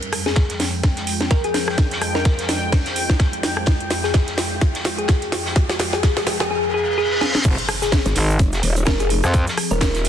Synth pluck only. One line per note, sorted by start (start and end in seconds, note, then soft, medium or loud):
0.26 0.45 G#4 medium
1.31 1.42 A#4 medium
1.44 2.10 G#4 medium
2.15 2.49 A#4 medium
4.04 4.23 G#4 medium
4.98 5.17 G#4 medium
5.93 6.02 G#4 medium
6.40 6.49 G#4 medium
6.51 6.70 G#4 medium
6.74 6.94 G#4 medium
6.98 7.17 G#4 loud
7.21 7.41 G#4 medium
7.82 8.00 G#4 medium
8.87 8.97 A#4 medium
9.00 9.66 G#4 medium
9.71 10.05 A#4 medium